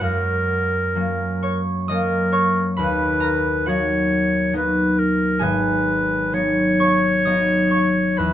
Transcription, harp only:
0, 0, Header, 1, 2, 480
1, 0, Start_track
1, 0, Tempo, 940439
1, 14, Time_signature, 3, 2, 24, 8
1, 974, Tempo, 877193
1, 2894, Tempo, 920245
1, 4415, End_track
2, 0, Start_track
2, 0, Title_t, "Harp"
2, 0, Program_c, 0, 46
2, 0, Note_on_c, 0, 61, 43
2, 0, Note_on_c, 0, 70, 52
2, 0, Note_on_c, 0, 73, 53
2, 0, Note_on_c, 0, 78, 74
2, 4, Note_on_c, 0, 42, 51
2, 7, Note_on_c, 0, 66, 52
2, 152, Note_off_c, 0, 73, 0
2, 485, Note_off_c, 0, 61, 0
2, 485, Note_on_c, 0, 54, 41
2, 488, Note_on_c, 0, 58, 39
2, 491, Note_on_c, 0, 61, 47
2, 611, Note_off_c, 0, 70, 0
2, 728, Note_on_c, 0, 85, 76
2, 732, Note_on_c, 0, 73, 54
2, 960, Note_on_c, 0, 87, 83
2, 963, Note_off_c, 0, 54, 0
2, 966, Note_on_c, 0, 75, 60
2, 967, Note_off_c, 0, 58, 0
2, 967, Note_off_c, 0, 61, 0
2, 969, Note_on_c, 0, 54, 42
2, 972, Note_on_c, 0, 58, 42
2, 974, Note_on_c, 0, 61, 47
2, 1194, Note_off_c, 0, 85, 0
2, 1196, Note_off_c, 0, 73, 0
2, 1200, Note_on_c, 0, 73, 59
2, 1202, Note_on_c, 0, 85, 74
2, 1383, Note_off_c, 0, 87, 0
2, 1444, Note_on_c, 0, 83, 80
2, 1448, Note_on_c, 0, 71, 58
2, 1455, Note_on_c, 0, 39, 56
2, 1473, Note_off_c, 0, 85, 0
2, 1474, Note_off_c, 0, 73, 0
2, 1479, Note_off_c, 0, 42, 0
2, 1482, Note_off_c, 0, 58, 0
2, 1482, Note_off_c, 0, 61, 0
2, 1682, Note_on_c, 0, 82, 76
2, 1690, Note_on_c, 0, 70, 59
2, 1926, Note_off_c, 0, 78, 0
2, 1930, Note_off_c, 0, 66, 0
2, 1933, Note_on_c, 0, 78, 67
2, 1935, Note_off_c, 0, 54, 0
2, 1937, Note_on_c, 0, 66, 56
2, 1942, Note_on_c, 0, 54, 43
2, 1944, Note_on_c, 0, 59, 43
2, 1947, Note_on_c, 0, 63, 45
2, 2402, Note_off_c, 0, 54, 0
2, 2406, Note_off_c, 0, 63, 0
2, 2408, Note_off_c, 0, 59, 0
2, 2409, Note_on_c, 0, 54, 44
2, 2414, Note_on_c, 0, 59, 43
2, 2414, Note_on_c, 0, 63, 47
2, 2880, Note_on_c, 0, 80, 78
2, 2885, Note_on_c, 0, 68, 61
2, 2888, Note_on_c, 0, 32, 59
2, 2903, Note_off_c, 0, 82, 0
2, 2907, Note_off_c, 0, 70, 0
2, 2910, Note_off_c, 0, 39, 0
2, 3090, Note_off_c, 0, 75, 0
2, 3363, Note_off_c, 0, 54, 0
2, 3364, Note_off_c, 0, 59, 0
2, 3366, Note_off_c, 0, 63, 0
2, 3368, Note_on_c, 0, 54, 42
2, 3372, Note_on_c, 0, 59, 45
2, 3372, Note_on_c, 0, 63, 48
2, 3546, Note_off_c, 0, 83, 0
2, 3550, Note_off_c, 0, 71, 0
2, 3614, Note_on_c, 0, 85, 75
2, 3621, Note_on_c, 0, 73, 59
2, 3851, Note_on_c, 0, 87, 69
2, 3852, Note_off_c, 0, 54, 0
2, 3854, Note_off_c, 0, 59, 0
2, 3856, Note_on_c, 0, 54, 43
2, 3858, Note_off_c, 0, 63, 0
2, 3858, Note_on_c, 0, 75, 50
2, 3860, Note_on_c, 0, 59, 42
2, 3864, Note_on_c, 0, 63, 47
2, 4012, Note_off_c, 0, 78, 0
2, 4016, Note_off_c, 0, 66, 0
2, 4025, Note_off_c, 0, 85, 0
2, 4088, Note_off_c, 0, 73, 0
2, 4088, Note_on_c, 0, 85, 70
2, 4094, Note_on_c, 0, 73, 57
2, 4330, Note_on_c, 0, 83, 79
2, 4337, Note_on_c, 0, 71, 57
2, 4341, Note_on_c, 0, 40, 55
2, 4349, Note_off_c, 0, 87, 0
2, 4351, Note_off_c, 0, 75, 0
2, 4352, Note_off_c, 0, 32, 0
2, 4352, Note_off_c, 0, 54, 0
2, 4352, Note_off_c, 0, 73, 0
2, 4355, Note_off_c, 0, 63, 0
2, 4415, Note_off_c, 0, 40, 0
2, 4415, Note_off_c, 0, 59, 0
2, 4415, Note_off_c, 0, 68, 0
2, 4415, Note_off_c, 0, 71, 0
2, 4415, Note_off_c, 0, 80, 0
2, 4415, Note_off_c, 0, 83, 0
2, 4415, Note_off_c, 0, 85, 0
2, 4415, End_track
0, 0, End_of_file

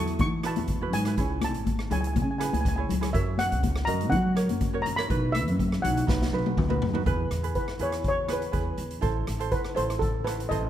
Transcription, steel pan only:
0, 0, Header, 1, 2, 480
1, 0, Start_track
1, 0, Key_signature, 4, "major"
1, 0, Tempo, 491400
1, 1151, Time_signature, 4, 2, 24, 8
1, 10448, End_track
2, 0, Start_track
2, 0, Title_t, "Steel pan"
2, 0, Program_c, 0, 114
2, 0, Note_on_c, 0, 85, 97
2, 172, Note_off_c, 0, 85, 0
2, 202, Note_on_c, 0, 85, 103
2, 308, Note_off_c, 0, 85, 0
2, 454, Note_on_c, 0, 81, 96
2, 914, Note_on_c, 0, 80, 97
2, 936, Note_off_c, 0, 81, 0
2, 1406, Note_off_c, 0, 80, 0
2, 1411, Note_on_c, 0, 81, 97
2, 1880, Note_on_c, 0, 80, 84
2, 1894, Note_off_c, 0, 81, 0
2, 1946, Note_off_c, 0, 80, 0
2, 1961, Note_on_c, 0, 80, 62
2, 2012, Note_off_c, 0, 80, 0
2, 2024, Note_on_c, 0, 80, 58
2, 2074, Note_off_c, 0, 80, 0
2, 2085, Note_on_c, 0, 80, 49
2, 2156, Note_off_c, 0, 80, 0
2, 2170, Note_on_c, 0, 80, 63
2, 2237, Note_off_c, 0, 80, 0
2, 2254, Note_on_c, 0, 80, 49
2, 2313, Note_off_c, 0, 80, 0
2, 2329, Note_on_c, 0, 80, 61
2, 2388, Note_off_c, 0, 80, 0
2, 2399, Note_on_c, 0, 80, 56
2, 2462, Note_off_c, 0, 80, 0
2, 2476, Note_on_c, 0, 80, 65
2, 2534, Note_off_c, 0, 80, 0
2, 2547, Note_on_c, 0, 80, 56
2, 2605, Note_off_c, 0, 80, 0
2, 2623, Note_on_c, 0, 80, 64
2, 2683, Note_off_c, 0, 80, 0
2, 2698, Note_on_c, 0, 80, 63
2, 2756, Note_off_c, 0, 80, 0
2, 3058, Note_on_c, 0, 76, 83
2, 3286, Note_off_c, 0, 76, 0
2, 3310, Note_on_c, 0, 78, 102
2, 3761, Note_on_c, 0, 82, 102
2, 3802, Note_off_c, 0, 78, 0
2, 4002, Note_on_c, 0, 78, 97
2, 4021, Note_off_c, 0, 82, 0
2, 4695, Note_off_c, 0, 78, 0
2, 4708, Note_on_c, 0, 82, 98
2, 4849, Note_on_c, 0, 83, 104
2, 4856, Note_off_c, 0, 82, 0
2, 5200, Note_on_c, 0, 76, 106
2, 5226, Note_off_c, 0, 83, 0
2, 5687, Note_on_c, 0, 78, 80
2, 5708, Note_off_c, 0, 76, 0
2, 6617, Note_off_c, 0, 78, 0
2, 7380, Note_on_c, 0, 71, 90
2, 7630, Note_off_c, 0, 71, 0
2, 7645, Note_on_c, 0, 73, 86
2, 7749, Note_off_c, 0, 73, 0
2, 7896, Note_on_c, 0, 73, 108
2, 8128, Note_off_c, 0, 73, 0
2, 8136, Note_on_c, 0, 71, 82
2, 8569, Note_off_c, 0, 71, 0
2, 9297, Note_on_c, 0, 71, 90
2, 9534, Note_on_c, 0, 72, 83
2, 9550, Note_off_c, 0, 71, 0
2, 9761, Note_on_c, 0, 69, 88
2, 9789, Note_off_c, 0, 72, 0
2, 10008, Note_on_c, 0, 71, 81
2, 10023, Note_off_c, 0, 69, 0
2, 10245, Note_on_c, 0, 75, 85
2, 10266, Note_off_c, 0, 71, 0
2, 10448, Note_off_c, 0, 75, 0
2, 10448, End_track
0, 0, End_of_file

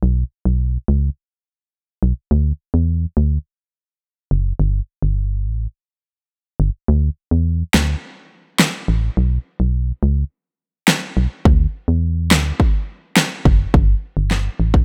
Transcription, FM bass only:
0, 0, Header, 1, 2, 480
1, 0, Start_track
1, 0, Key_signature, 2, "major"
1, 0, Tempo, 571429
1, 21, Time_signature, 4, 2, 24, 8
1, 12471, End_track
2, 0, Start_track
2, 0, Title_t, "FM bass"
2, 0, Program_c, 0, 39
2, 22, Note_on_c, 0, 35, 102
2, 202, Note_off_c, 0, 35, 0
2, 382, Note_on_c, 0, 35, 89
2, 653, Note_off_c, 0, 35, 0
2, 742, Note_on_c, 0, 37, 93
2, 923, Note_off_c, 0, 37, 0
2, 1702, Note_on_c, 0, 35, 88
2, 1792, Note_off_c, 0, 35, 0
2, 1941, Note_on_c, 0, 38, 101
2, 2122, Note_off_c, 0, 38, 0
2, 2300, Note_on_c, 0, 40, 83
2, 2572, Note_off_c, 0, 40, 0
2, 2662, Note_on_c, 0, 38, 91
2, 2842, Note_off_c, 0, 38, 0
2, 3622, Note_on_c, 0, 30, 93
2, 3802, Note_off_c, 0, 30, 0
2, 3860, Note_on_c, 0, 31, 104
2, 4041, Note_off_c, 0, 31, 0
2, 4221, Note_on_c, 0, 31, 87
2, 4582, Note_on_c, 0, 33, 84
2, 4595, Note_off_c, 0, 31, 0
2, 4763, Note_off_c, 0, 33, 0
2, 5541, Note_on_c, 0, 31, 97
2, 5632, Note_off_c, 0, 31, 0
2, 5783, Note_on_c, 0, 38, 111
2, 5963, Note_off_c, 0, 38, 0
2, 6143, Note_on_c, 0, 40, 86
2, 6414, Note_off_c, 0, 40, 0
2, 6504, Note_on_c, 0, 38, 90
2, 6684, Note_off_c, 0, 38, 0
2, 7462, Note_on_c, 0, 33, 93
2, 7643, Note_off_c, 0, 33, 0
2, 7705, Note_on_c, 0, 35, 105
2, 7884, Note_off_c, 0, 35, 0
2, 8063, Note_on_c, 0, 35, 88
2, 8333, Note_off_c, 0, 35, 0
2, 8422, Note_on_c, 0, 37, 95
2, 8603, Note_off_c, 0, 37, 0
2, 9381, Note_on_c, 0, 35, 91
2, 9471, Note_off_c, 0, 35, 0
2, 9621, Note_on_c, 0, 38, 104
2, 9802, Note_off_c, 0, 38, 0
2, 9979, Note_on_c, 0, 40, 88
2, 10340, Note_on_c, 0, 38, 100
2, 10352, Note_off_c, 0, 40, 0
2, 10521, Note_off_c, 0, 38, 0
2, 11301, Note_on_c, 0, 30, 99
2, 11482, Note_off_c, 0, 30, 0
2, 11542, Note_on_c, 0, 31, 102
2, 11722, Note_off_c, 0, 31, 0
2, 11901, Note_on_c, 0, 31, 90
2, 12172, Note_off_c, 0, 31, 0
2, 12261, Note_on_c, 0, 33, 89
2, 12442, Note_off_c, 0, 33, 0
2, 12471, End_track
0, 0, End_of_file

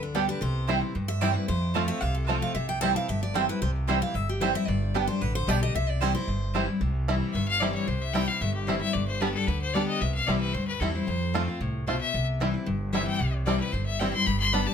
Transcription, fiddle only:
0, 0, Header, 1, 2, 480
1, 0, Start_track
1, 0, Key_signature, 0, "major"
1, 0, Tempo, 266548
1, 747, Time_signature, 4, 2, 24, 8
1, 26542, End_track
2, 0, Start_track
2, 0, Title_t, "Fiddle"
2, 0, Program_c, 0, 110
2, 13207, Note_on_c, 0, 76, 83
2, 13447, Note_off_c, 0, 76, 0
2, 13469, Note_on_c, 0, 77, 116
2, 13691, Note_on_c, 0, 74, 96
2, 13718, Note_off_c, 0, 77, 0
2, 13932, Note_off_c, 0, 74, 0
2, 13943, Note_on_c, 0, 73, 89
2, 14180, Note_on_c, 0, 72, 80
2, 14207, Note_off_c, 0, 73, 0
2, 14434, Note_on_c, 0, 76, 91
2, 14461, Note_off_c, 0, 72, 0
2, 14645, Note_on_c, 0, 79, 104
2, 14672, Note_off_c, 0, 76, 0
2, 14905, Note_on_c, 0, 77, 93
2, 14932, Note_off_c, 0, 79, 0
2, 15145, Note_on_c, 0, 76, 81
2, 15172, Note_off_c, 0, 77, 0
2, 15367, Note_off_c, 0, 76, 0
2, 15377, Note_on_c, 0, 67, 72
2, 15614, Note_on_c, 0, 72, 79
2, 15641, Note_off_c, 0, 67, 0
2, 15847, Note_off_c, 0, 72, 0
2, 15858, Note_on_c, 0, 76, 105
2, 16084, Note_on_c, 0, 74, 88
2, 16111, Note_off_c, 0, 76, 0
2, 16332, Note_off_c, 0, 74, 0
2, 16343, Note_on_c, 0, 72, 84
2, 16586, Note_on_c, 0, 71, 91
2, 16613, Note_off_c, 0, 72, 0
2, 16815, Note_off_c, 0, 71, 0
2, 16826, Note_on_c, 0, 69, 88
2, 17058, Note_on_c, 0, 71, 82
2, 17085, Note_off_c, 0, 69, 0
2, 17304, Note_off_c, 0, 71, 0
2, 17315, Note_on_c, 0, 72, 90
2, 17540, Note_on_c, 0, 74, 86
2, 17567, Note_off_c, 0, 72, 0
2, 17779, Note_off_c, 0, 74, 0
2, 17790, Note_on_c, 0, 75, 89
2, 18029, Note_on_c, 0, 76, 82
2, 18056, Note_off_c, 0, 75, 0
2, 18254, Note_off_c, 0, 76, 0
2, 18264, Note_on_c, 0, 77, 98
2, 18492, Note_on_c, 0, 74, 88
2, 18519, Note_off_c, 0, 77, 0
2, 18726, Note_off_c, 0, 74, 0
2, 18737, Note_on_c, 0, 71, 86
2, 18975, Note_on_c, 0, 72, 94
2, 19002, Note_off_c, 0, 71, 0
2, 19211, Note_off_c, 0, 72, 0
2, 19222, Note_on_c, 0, 71, 86
2, 19443, Note_on_c, 0, 69, 76
2, 19470, Note_off_c, 0, 71, 0
2, 19683, Note_off_c, 0, 69, 0
2, 19694, Note_on_c, 0, 72, 91
2, 20822, Note_off_c, 0, 72, 0
2, 21380, Note_on_c, 0, 72, 85
2, 21612, Note_off_c, 0, 72, 0
2, 21623, Note_on_c, 0, 76, 95
2, 22073, Note_off_c, 0, 76, 0
2, 23286, Note_on_c, 0, 76, 87
2, 23524, Note_off_c, 0, 76, 0
2, 23533, Note_on_c, 0, 79, 99
2, 23986, Note_off_c, 0, 79, 0
2, 24238, Note_on_c, 0, 74, 93
2, 24480, Note_off_c, 0, 74, 0
2, 24491, Note_on_c, 0, 71, 93
2, 24711, Note_on_c, 0, 72, 82
2, 24739, Note_off_c, 0, 71, 0
2, 24945, Note_off_c, 0, 72, 0
2, 24956, Note_on_c, 0, 76, 97
2, 25204, Note_on_c, 0, 79, 86
2, 25231, Note_off_c, 0, 76, 0
2, 25436, Note_off_c, 0, 79, 0
2, 25447, Note_on_c, 0, 84, 113
2, 25690, Note_on_c, 0, 83, 101
2, 25717, Note_off_c, 0, 84, 0
2, 25918, Note_off_c, 0, 83, 0
2, 25929, Note_on_c, 0, 84, 108
2, 26158, Note_on_c, 0, 83, 97
2, 26185, Note_off_c, 0, 84, 0
2, 26417, Note_on_c, 0, 81, 101
2, 26444, Note_off_c, 0, 83, 0
2, 26542, Note_off_c, 0, 81, 0
2, 26542, End_track
0, 0, End_of_file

